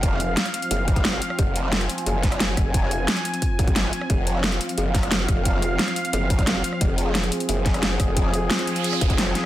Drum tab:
HH |x-x-xxxxx-xxx-x-|x-x-xxxxx-xxx-x-|x-x-xxxxx-xxx-x-|x-x-xxxxx-xxx-x-|
SD |----or------or-r|----or----oro-r-|----or------or-r|----or----oro-r-|
BD |o---------oo----|o---------o---o-|o-------o-oo----|o---------o---o-|

HH |x-x-xxxxx-xxx-x-|x-x-xxxxx-xxx-x-|x-x-xxxxx-xxx-x-|
SD |----or------or-r|----or----oro-r-|----or---r--oro-|
BD |o---------oo----|o---------o---o-|o---------oo----|